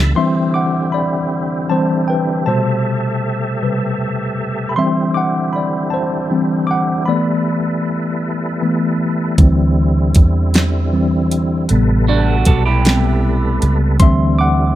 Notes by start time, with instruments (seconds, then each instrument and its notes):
Already playing: fingered electric bass C#2, tonewheel organ G3 E5 A5 B5
0.15 tonewheel organ D3 C4 E4 G4, tine electric piano E3 G3 C4 E5 C6
0.54 tine electric piano F#5 D6
0.92 tine electric piano D5 B5
1.70 tine electric piano E3 G3 C4 C5 A5
2.08 tine electric piano B4 G5
2.46 tine electric piano B2 C3 G3 C5 A5, tonewheel organ A3 A4 E5
3.63 tine electric piano C3 G3 B4
4.69 tine electric piano B5
4.76 tonewheel organ D3 C4 E4, tine electric piano E3 G3 C4 E5 C6
5.14 tine electric piano F#5 D6
5.53 tine electric piano D5 B5
5.90 tine electric piano C5 A5
6.31 tine electric piano E3 G3 C4
6.67 tine electric piano F#5 D6
7.06 tine electric piano E3 A3 B3 D5 B5, tonewheel organ G3 A4 B4
8.62 tine electric piano E3 A3 B3
9.38 fingered electric bass D2, tonewheel organ D3 G3 C4, tine electric piano E3 G3 C4, kick, closed hi-hat
10.15 fingered electric bass E2, kick, closed hi-hat
10.54 snare, closed hi-hat
10.93 tine electric piano E3 G3 C4
11.31 closed hi-hat
11.69 fingered electric bass A1, tine electric piano C3 G3 B3, tonewheel organ A3 A4 B4, closed hi-hat
12.08 clean electric guitar D4 F#4
12.45 fingered electric bass B1, clean electric guitar F#4 A4, kick, closed hi-hat
12.66 clean electric guitar E4 G4
12.85 tine electric piano G3 B3 C4, snare, closed hi-hat
13.62 fingered electric bass C#2, closed hi-hat
14.00 fingered electric bass D2, tonewheel organ D3 C4 E4, tine electric piano E3 G3 C4 E5 C6, kick, closed hi-hat
14.39 tine electric piano F#5 D6